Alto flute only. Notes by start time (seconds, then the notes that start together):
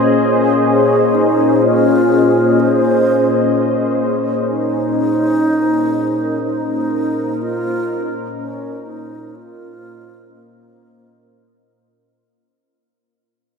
0.66 C#4
1.15 D#4
1.62 F4
2.60 C5
4.49 D#4
6.45 D#4
7.42 F4
8.38 C#4
8.86 D#4
9.35 F4
10.34 A#3